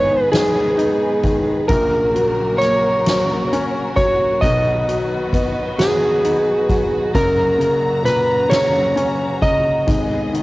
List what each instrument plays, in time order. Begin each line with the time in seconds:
Already playing: felt piano G#1 G#2 D#3 B3, string section D#3 G#3 B3 G#4 B4, electric slide guitar C#5
0.32 felt piano D#3, electric slide guitar G#4, snare, closed hi-hat
0.77 felt piano D#4, closed hi-hat
1.23 felt piano D#3, kick, closed hi-hat
1.68 felt piano A#1 A#2, string section C#3 F#3 A#3 F#4 A#4, electric slide guitar A#4, kick, closed hi-hat
2.15 felt piano F#3, closed hi-hat
2.58 felt piano A#3, electric slide guitar C#5, snare, closed hi-hat
3.06 felt piano F#3, snare, closed hi-hat
3.53 felt piano C#4, closed hi-hat
3.96 felt piano F#3, electric slide guitar C#5, kick, closed hi-hat
4.41 felt piano B1 B2, string section D#3 B3 B4, electric slide guitar D#5, kick, closed hi-hat
4.88 felt piano F#3, closed hi-hat
5.33 felt piano B3, kick, closed hi-hat
5.78 felt piano F#3, electric slide guitar G#4, snare, closed hi-hat
6.25 felt piano D#4, closed hi-hat
6.69 felt piano F#3, kick, closed hi-hat
7.13 felt piano F#1 F#2, string section A#2 C#3 A#5, electric slide guitar A#4, kick, closed hi-hat
7.58 felt piano C#3, closed hi-hat
8.04 felt piano A#2, electric slide guitar B4, snare, closed hi-hat
8.49 felt piano C#3, electric slide guitar C#5, snare, closed hi-hat
8.96 felt piano C#4, closed hi-hat
9.42 felt piano C#3, electric slide guitar D#5, kick, closed hi-hat
9.87 felt piano G#1 G#2, string section D#3 G#3 B3 G#4 D#5, kick, closed hi-hat
10.33 felt piano D#3, closed hi-hat